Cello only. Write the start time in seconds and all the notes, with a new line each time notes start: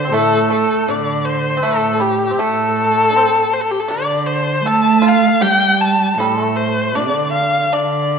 Already playing: D3
0.10 A2
0.90 D3
1.65 A2
2.38 A2
3.89 D3
4.65 A3
5.42 G3
6.17 A2
6.95 D3
7.75 D3